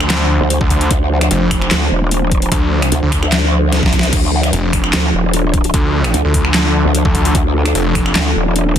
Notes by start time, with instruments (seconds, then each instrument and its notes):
Already playing: analog synth pad F3 D4 C5
0.00 detuned saw bass D2, finger snap
0.10 snare, clap, closed hi-hat
0.41 wobble bass D2
0.50 closed hi-hat
0.61 detuned saw bass D2, kick
0.70 kick, closed hi-hat
0.81 closed hi-hat
0.91 wobble bass D2, kick, closed hi-hat
1.21 finger snap, closed hi-hat
1.31 detuned saw bass F1, closed hi-hat
1.51 finger snap, kick, open hi-hat
1.62 finger snap
1.71 wobble bass D2, snare, clap, closed hi-hat
1.91 wobble bass D#1
2.11 closed hi-hat
2.32 wobble bass D1, kick, closed hi-hat
2.42 closed hi-hat
2.52 detuned saw bass D2, kick, closed hi-hat
2.82 finger snap, closed hi-hat
2.92 wobble bass D2, closed hi-hat
3.02 detuned saw bass D2
3.12 finger snap, kick, open hi-hat
3.23 wobble bass D2, finger snap
3.32 snare, clap, closed hi-hat
3.72 snare, closed hi-hat
3.83 wobble bass C2, kick, snare
3.93 kick, closed hi-hat
3.99 snare, closed hi-hat
4.13 wobble bass D2, analog synth pad A4, kick, closed hi-hat, crash
4.43 finger snap, closed hi-hat
4.53 detuned saw bass F1, closed hi-hat
4.73 finger snap, kick, open hi-hat
4.84 finger snap
4.93 wobble bass D2, snare, clap, closed hi-hat
5.14 wobble bass D#1
5.34 closed hi-hat
5.54 kick, closed hi-hat
5.64 closed hi-hat
5.74 detuned saw bass D2, kick, closed hi-hat
6.04 finger snap, closed hi-hat
6.14 wobble bass D2, closed hi-hat
6.25 detuned saw bass D2
6.34 kick, open hi-hat
6.45 detuned saw bass D2, finger snap
6.54 snare, clap, closed hi-hat
6.85 wobble bass D2
6.95 closed hi-hat
7.05 detuned saw bass D2, kick
7.15 kick, closed hi-hat
7.25 closed hi-hat
7.35 wobble bass D2, kick, closed hi-hat
7.66 finger snap, closed hi-hat
7.75 detuned saw bass F1, closed hi-hat
7.95 finger snap, kick, open hi-hat
8.06 finger snap
8.15 wobble bass D2, snare, clap, closed hi-hat
8.36 wobble bass D#1
8.56 closed hi-hat
8.76 kick